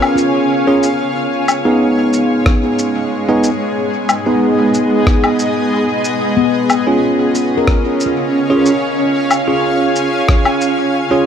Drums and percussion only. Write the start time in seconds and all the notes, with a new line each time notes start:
0.02 low woodblock
0.18 shaker
0.83 shaker
1.48 low woodblock, shaker
2.13 shaker
2.46 kick, cross-stick
2.79 shaker
3.44 shaker
4.09 low woodblock, shaker
4.74 shaker
5.07 kick, cross-stick
5.24 low woodblock
5.39 shaker
6.04 shaker
6.70 low woodblock, shaker
7.35 shaker
7.67 kick, cross-stick
8.00 shaker
8.66 shaker
9.31 low woodblock, shaker
9.96 shaker
10.28 kick, cross-stick
10.45 low woodblock
10.61 shaker